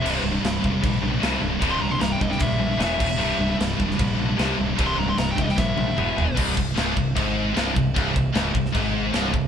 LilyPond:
<<
  \new Staff \with { instrumentName = "Lead electric guitar" } { \time 4/4 \tempo 4 = 152 e''8 r2. r8 | r16 c'''16 bes''16 c'''16 bes''16 g''16 ees''16 g''16 e''2~ | e''4 r2. | r16 c'''16 bes''16 c'''16 bes''16 g''16 ees''16 g''16 e''2 |
r1 | r1 | }
  \new Staff \with { instrumentName = "Distorted electric guitar" } { \clef bass \time 4/4 <c, g, c>8 <c, g,>16 <c, g,>16 <c, g,>8 <c, g,>16 <c, g,>16 <c, g,>8 <c, g,>16 <c, g,>16 <c, g, c>8 <c, g,>16 <c, g,>16 | <c, g, c>8 <c, g,>16 <c, g,>16 <c, g,>8 <c, g,>16 <c, g,>16 <c, g,>8 <c, g,>16 <c, g,>16 <e, b, e>8 <e, b, e>16 <e, b,>16 | <c, g, c>8 <c, g,>16 <c, g,>16 <c, g,>8 <c, g,>16 <c, g,>16 <c, g,>8 <c, g,>16 <c, g,>16 <c, g, c>8 <c, g,>16 <c, g,>16 | <c, g, c>8 <c, g,>16 <c, g,>16 <c, g,>8 <c, g,>16 <c, g,>16 <c, g,>8 <c, g,>16 <c, g,>16 <e, b, e>8 <e, b, e>16 <e, b,>16 |
c,8 c,8 des,8 c,8 aes,4 c,8 c,8 | c,8 c,8 des,8 c,8 aes,4 c,8 c,8 | }
  \new Staff \with { instrumentName = "Distorted electric guitar" } { \clef bass \time 4/4 <c, g, c>8 <c, g,>16 <c, g,>16 <c, g,>8 <c, g,>16 <c, g,>16 <c, g,>8 <c, g,>16 <c, g,>16 <c, g, c>8 <c, g,>16 <c, g,>16 | <c, g, c>8 <c, g,>16 <c, g,>16 <c, g,>8 <c, g,>16 <c, g,>16 <c, g,>8 <c, g,>16 <c, g,>16 <e, b, e>8 <e, b, e>16 <e, b,>16 | <c, g, c>8 <c, g,>16 <c, g,>16 <c, g,>8 <c, g,>16 <c, g,>16 <c, g,>8 <c, g,>16 <c, g,>16 <c, g, c>8 <c, g,>16 <c, g,>16 | <c, g, c>8 <c, g,>16 <c, g,>16 <c, g,>8 <c, g,>16 <c, g,>16 <c, g,>8 <c, g,>16 <c, g,>16 <e, b, e>8 <e, b, e>16 <e, b,>16 |
c,8 c,8 des,8 c,8 aes,4 c,8 c,8 | c,8 c,8 des,8 c,8 aes,4 c,8 c,8 | }
  \new Staff \with { instrumentName = "Distorted electric guitar" } { \clef bass \time 4/4 <c, g, c>1 | <c, g, c>2. r4 | <c, g, c>1 | <c, g, c>2. r4 |
c,8 c,8 des,8 c,8 aes,4 c,8 c,8 | c,8 c,8 des,8 c,8 aes,4 c,8 c,8 | }
  \new Staff \with { instrumentName = "Picked electric bass" } { \clef bass \time 4/4 c,,8 c,,8 c,,8 e,,8 bes,,8 bes,,8 c,8 c,,8 | c,,8 c,,8 c,,8 e,,8 bes,,8 bes,,8 e,,8 e,,8 | c,,8 c,,8 c,,8 e,,8 bes,,8 bes,,8 c,8 c,,8 | c,,8 c,,8 c,,8 e,,8 bes,,8 bes,,8 e,,8 e,,8 |
c,,8 c,,8 des,,8 c,,8 aes,,4 c,,8 c,,8 | c,,8 c,,8 des,,8 c,,8 aes,,4 c,,8 c,,8 | }
  \new DrumStaff \with { instrumentName = "Drums" } \drummode { \time 4/4 cymc4 <cymc sn>8 bd8 <cymc bd>4 <cymc sn>4 | <cymc bd>4 <cymc sn>8 bd16 sn16 <cymc bd>4 <cymc sn>8 <cymc bd>8 | cymc4 <cymc sn>8 bd16 sn16 <cymc bd>4 <cymc sn>4 | <cymc bd>4 <cymc sn>8 bd16 sn16 <bd sn>8 tommh8 toml8 tomfh8 |
<cymc bd>8 bd8 <cymc sn>8 bd8 <cymc bd>4 <cymc sn>8 bd8 | <cymc bd>8 bd8 <cymc sn>8 bd16 sn16 <cymc bd>4 <cymc sn>8 bd8 | }
>>